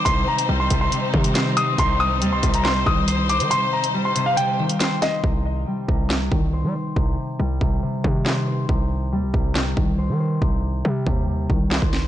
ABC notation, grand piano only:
X:1
M:4/4
L:1/16
Q:1/4=139
K:Cm
V:1 name="Grand piano"
c'2 b3 c'2 c'6- c' e'2 | c'2 e'3 c'2 b c'2 e'4 d'2 | c'2 b3 c'2 f g6 e2 | z16 |
z16 | z16 | z16 |]